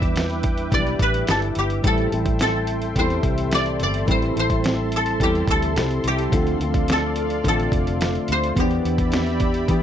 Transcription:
Already playing: E2 G3 D4 E4 B4 C5 D5 E5 G5 D6
0.02 kick, closed hi-hat
0.16 snare, closed hi-hat
0.30 snare, closed hi-hat
0.43 kick, closed hi-hat
0.58 closed hi-hat
0.71 B1 E3 G3 D4 E4 B4 D5, kick, closed hi-hat
0.87 closed hi-hat
0.99 A1 B4, kick, closed hi-hat
1.14 closed hi-hat
1.27 G1 G3 D4 E4 A4 B4, snare, closed hi-hat
1.42 closed hi-hat
1.55 G1 G4, closed hi-hat
1.70 closed hi-hat
1.82 A1 A2 E3 G3 C4 E4 A4 G5 C6, kick, closed hi-hat
1.87 A4
1.98 closed hi-hat
2.12 A1 G3 C4 E4 A4, closed hi-hat
2.26 kick, closed hi-hat
2.39 A4, snare, closed hi-hat
2.67 closed hi-hat
2.82 closed hi-hat
2.95 E2 A2 E3 G3 C4 C5, kick, closed hi-hat
2.99 E4 A4
3.10 closed hi-hat
3.23 C2, kick, closed hi-hat
3.38 closed hi-hat
3.51 D5, snare, closed hi-hat
3.66 closed hi-hat
3.80 G1 D5, closed hi-hat
3.94 closed hi-hat
4.06 A1 A2 E3 G3 C4 E4 A4 A5, kick, closed hi-hat
4.11 A4 C5
4.22 closed hi-hat
4.35 A1 G3 C4 E4 A4, closed hi-hat
4.39 C5
4.50 kick, closed hi-hat
4.64 snare, closed hi-hat
4.92 closed hi-hat
4.96 A4
5.06 closed hi-hat
5.20 E2 A2 E3 G3 C4 E4 G4 A4, kick, closed hi-hat
5.35 closed hi-hat
5.47 D2 A4, kick, closed hi-hat
5.62 closed hi-hat
5.75 C2 G3 C4 E4 A4, snare, closed hi-hat
5.91 closed hi-hat
6.04 C2 G4, closed hi-hat
6.18 closed hi-hat
6.30 D2 D3 F3 A3 C4 D4 D5 F5, kick, closed hi-hat
6.34 F4 A4
6.47 closed hi-hat
6.60 D2 A3 C4 F4, closed hi-hat
6.74 kick, closed hi-hat
6.88 A4, snare, closed hi-hat
7.16 closed hi-hat
7.30 closed hi-hat
7.43 A1 D3 A3 C4, kick, closed hi-hat
7.48 F4 A4
7.60 closed hi-hat
7.72 F1, kick, closed hi-hat
7.87 closed hi-hat
8.01 snare, closed hi-hat
8.15 closed hi-hat
8.28 D2 C5, closed hi-hat
8.44 closed hi-hat
8.54 E2 E3 B3 D4 G4 D5 E5 B5, kick, closed hi-hat
8.58 B3 D4 G4
8.71 closed hi-hat
8.85 E2, closed hi-hat
8.98 kick, closed hi-hat
9.12 snare, closed hi-hat
9.26 snare, closed hi-hat
9.40 kick, closed hi-hat
9.54 closed hi-hat
9.68 E3 B3 D4 G4, kick, closed hi-hat

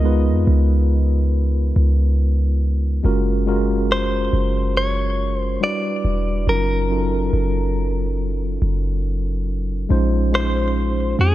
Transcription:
Already playing: C#2 G#3 B3 D#4 F4 A#4 D#5
0.03 G#3 B3 D#4 F4 B4
0.30 F2
0.47 C#2
1.76 C#2
3.03 F#1 G#3 C#4 F4 F#4 A#4
3.46 G#3 C#4 F4 F#4 A#4
3.92 C5
4.33 F#1
4.77 C#5
5.37 C5
5.60 G3 D4 E4 F#4 B4 D5
6.05 E1
6.46 F#1 F#3 C#4 D#4 F4 A#4
6.89 F#3 C#4 D#4 F4 A4
6.98 A#4
7.33 F#1
8.62 F#1
9.89 A#1 G#3 C#4 D#4 F4 C5
10.32 G#3 C#4 D#4 F4 C5
11.19 F2 G#4

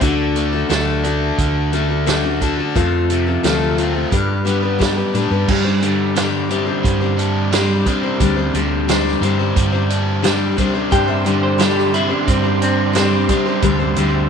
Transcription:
0.01 D2 D3 A3 D4 F#4 A4, kick, closed hi-hat
0.36 A3, closed hi-hat
0.53 D4 F#4 A4
0.69 D2 D3 A3 D4 F#4 A4, snare, closed hi-hat
1.04 A3 D4 F#4 A4, closed hi-hat
1.38 D2 D3, kick, closed hi-hat
1.72 A3 D4 F#4 A4, closed hi-hat
1.89 D4 F#4 A4
2.06 D3 A3 D4 F#4 A4, snare, closed hi-hat
2.23 D4 F#4 A4
2.41 A3 D4 F#4 A4, kick, closed hi-hat
2.58 D4 F#4 A4
2.75 F2 F3 A3 C4 F4 A4, kick, closed hi-hat
3.10 C3, closed hi-hat
3.27 C4 F4 A4
3.43 D2 F3 A3 C4 F4 A4, snare, closed hi-hat
3.76 A3 C4 F4 A4, closed hi-hat
3.94 C4 F4 A4
4.11 G2 G3 D4 G4 B4, kick, closed hi-hat
4.45 G3 B3 D4 G4 B4, closed hi-hat
4.62 D4 G4 B4
4.79 G3 D4 G4 B4, kick, snare, closed hi-hat
4.97 D4 G4 B4
5.13 A2 G3 D4 G4 B4, closed hi-hat
5.31 G2 D4 G4 B4
5.48 G2 G3 D4 G4 C5, kick, crash
5.64 D4 G4 C5
5.81 D3 G3 D4 G4 C5, closed hi-hat
6.16 G3 D4 G4 C5, snare, closed hi-hat
6.49 G3 C4 D4 G4 C5, closed hi-hat
6.67 D4 G4 C5
6.84 G2 G3, kick, closed hi-hat
7.01 D4 G4 C5
7.18 D4, closed hi-hat
7.52 G3 D4 G4 C5, snare, closed hi-hat
7.86 G3 C4 D4 G4 C5, kick, closed hi-hat
8.03 D4 G4 C5
8.20 D2 G2 G3 D4 G4 C5, kick, closed hi-hat
8.36 D4 G4 C5
8.54 D2 D3 G3 D4 G4 C5, closed hi-hat
8.88 G3 D4 G4 C5, snare, closed hi-hat
9.08 snare
9.21 G2 G3 C4 D4 G4 C5, closed hi-hat
9.39 D4 G4 C5
9.56 G2 G3, kick, closed hi-hat
9.73 D4 G4 C5
9.90 D4, closed hi-hat
10.22 G3 D4 G4 C5, snare, closed hi-hat
10.57 D2 G3 C4 D4 G4 C5, kick, closed hi-hat
10.74 D4 G4 C5
10.91 G2 G3 D4 G4 C5 D5 G5 C6, kick, closed hi-hat
11.07 D4 G4 C5 E5
11.24 D3 G3 D4 G4 C5 D5, closed hi-hat
11.43 C5
11.58 G3 D4 G4 A4 C5, snare, closed hi-hat
11.76 G4, snare
11.92 G3 C4 D4 E4 G4 C5, closed hi-hat
12.09 D4 G4 C5
12.26 G2 G3 C4, kick, closed hi-hat
12.42 D4 G4 C5
12.62 C4 D4, closed hi-hat
12.93 G3 D4 G4 C5, snare, closed hi-hat
13.28 G3 C4 D4 G4 C5, kick, closed hi-hat
13.46 D4 G4 C5
13.62 D2 G2 G3 D4 G4 C5 E5, kick, closed hi-hat
13.79 D4 G4 C5
13.96 D2 D3 G3 D4 G4 C5, closed hi-hat

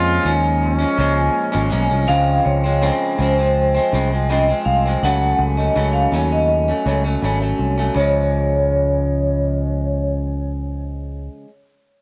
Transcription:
Already playing: F2 A#2 F3 G#3 C#4 F4
0.23 D#2 A#2 F3 G#3 C#4
0.65 C#4
0.79 F3 G#3 C#4
0.97 C#2 A#2 F3 G#3 C#4
1.52 G#1 A#2 F3 G#3 C#4
1.70 B1 A#2 F3 G#3 C#4
1.90 C2 F3 G#3 C#4
2.07 C#2 C#3 F3 G#3 C4 F5
2.45 C#2 C#5
2.64 F3 G#3 C4
2.82 C#3 F3 G#3 C4
3.18 C#2 C#3 F3 G#3 C4 C5
3.38 F3 G#3 C4
3.74 F3 G#3 C4
3.92 C2 C#3 F3 G#3 C4
4.10 F3 G#3 C4
4.29 C#3 F3 G#3 C4 D#5
4.48 F3 G#3 C4
4.65 C2 F5
4.86 F3 G#3 C4
5.03 C#2 C#3 F#3 A3 C#4 F#5
5.39 C#2
5.57 F#3 A3 C#4 D#5
5.75 C#2 C#3 F#3 A3 C#4
5.93 F5
6.12 D#2 C#3 F#3 A3 C#4
6.32 D#5
6.68 F#3 A3 C#4
6.86 C#2 C#3 F#3 A3 C#4 C#5
7.04 F#3 A3 C#4
7.22 G#1 C#3 F#3 A3 C#4
7.40 F#3 A3 C#4
7.59 C2
7.78 F#3 A3 C#4
7.94 C#2 C#3 F3 C#5
7.99 G#3

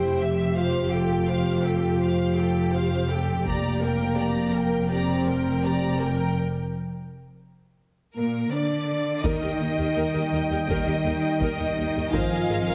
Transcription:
Already playing: F1 F2 E4 G4 C5 G5
0.20 G4 E5
0.55 F4 G4 C5 F5
0.92 G4 A4 G5
1.27 F4 G4 C5 F5
1.64 G4 A4 G5
2.00 G4 C5 F5
2.36 G4 A4 G5
2.73 G4 C5 F5
3.08 G4 A4 G5
3.45 F1 F2 A#3 G4 D5 A#5, taiko
3.81 A#4 G5
4.17 G4 D5 A#5
4.53 A#4 G5
4.89 C4 G4 D5 A#5
5.26 A#4 G5
5.62 G4 D5 A#5
5.99 A#4 G5
8.15 A#2 A#3 A#4
8.52 D3 D4 D5
9.22 D#2 D#3 G3 D#4 A#4 D#5 G5, taiko
9.42 D#2 G4 A#4
9.60 D#2 D#4 A#4
9.78 D#2 G4 A#4
9.95 D#2 A#4
10.14 D#2 G4 A#4
10.32 D#2 D#4 A#4
10.50 D#2 G4 A#4
10.68 D#2 D#3 D#4 A#4 D#5, taiko
10.86 D#2 G4 A#4
11.04 D#2 D#4 A#4
11.40 D#2 A#4, taiko
11.59 D#2 G4 A#4
11.76 D#2 D#4 A#4
11.95 D#2 G4 A#4
12.12 G#1 F3 C4 F4 A#4 C5 F5 G#5, taiko
12.31 G#1 A#4
12.49 G#1 G#4 A#4
12.68 G#1 A#4

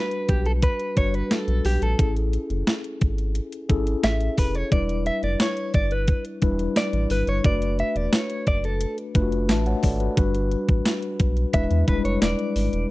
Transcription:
Already playing: G3 D4 F#4 B4
0.11 closed hi-hat
0.29 B1 G4, kick, closed hi-hat
0.46 A4, closed hi-hat
0.62 B4, kick, closed hi-hat
0.80 closed hi-hat
0.96 G1 G3 D4 F#4 B4 C#5, kick, closed hi-hat
1.14 B4, closed hi-hat
1.31 A4, snare, closed hi-hat
1.48 B1, closed hi-hat
1.65 B1 G4, open hi-hat
1.82 A#1 A4, closed hi-hat
1.98 A1 C#4 E4 G#4 A4, kick, closed hi-hat
2.17 closed hi-hat
2.33 closed hi-hat
2.50 F#1, closed hi-hat
2.67 snare, closed hi-hat
2.84 closed hi-hat
3.01 G#1, kick, closed hi-hat
3.18 closed hi-hat
3.35 closed hi-hat
3.52 closed hi-hat
3.69 G#1 C#4 E4 G#4 A4, kick, closed hi-hat
3.87 closed hi-hat
4.04 A1 E5, snare, closed hi-hat
4.21 closed hi-hat
4.38 F1 B4, kick, open hi-hat
4.55 C#5, closed hi-hat
4.71 E1 G3 D4 E4 B4 D5, kick, closed hi-hat
4.89 closed hi-hat
5.06 E5, closed hi-hat
5.23 F#1 D5, closed hi-hat
5.40 C#5, snare, closed hi-hat, tambourine
5.57 closed hi-hat
5.74 G1 D5, kick, closed hi-hat
5.91 B4, closed hi-hat
6.08 kick, closed hi-hat
6.25 closed hi-hat
6.42 E1 G3 D4 E4 B4, kick, closed hi-hat
6.59 closed hi-hat
6.76 D5, snare, closed hi-hat, tambourine
6.93 A1, closed hi-hat
7.10 G#1 B4, open hi-hat
7.27 G1 C#5, closed hi-hat
7.44 F#1 A3 D4 F#4 B4 D5, kick, closed hi-hat
7.62 closed hi-hat
7.79 E5, closed hi-hat
7.96 E1 D5, closed hi-hat
8.13 C#5, snare, closed hi-hat, tambourine
8.30 closed hi-hat
8.47 F#1 D5, kick, closed hi-hat
8.64 A4, closed hi-hat
8.81 closed hi-hat
8.98 closed hi-hat
9.15 F#1 A3 D4 F4 B4, kick, closed hi-hat
9.22 F#4
9.32 closed hi-hat
9.49 A1 E5 A5, snare, closed hi-hat, tambourine
9.66 C#5 F#5, closed hi-hat
9.83 G#1 A4 D5, kick, open hi-hat
10.00 F#4 B4, closed hi-hat
10.17 G1 G3 D4 F#4 B4, kick, closed hi-hat
10.34 closed hi-hat
10.51 closed hi-hat
10.69 A1, kick, closed hi-hat
10.85 snare, closed hi-hat, tambourine
11.03 closed hi-hat
11.20 B1, kick, closed hi-hat
11.37 closed hi-hat
11.53 E1 G#3 D4 E4 B4 E5, kick, closed hi-hat
11.71 E2, closed hi-hat
11.87 E1 G3 D4 E4 B4, kick, closed hi-hat
11.94 G#3
12.05 F#1 C#5, closed hi-hat
12.22 E1 D5, snare, closed hi-hat, tambourine
12.39 closed hi-hat
12.56 G#1, open hi-hat
12.73 E1, closed hi-hat

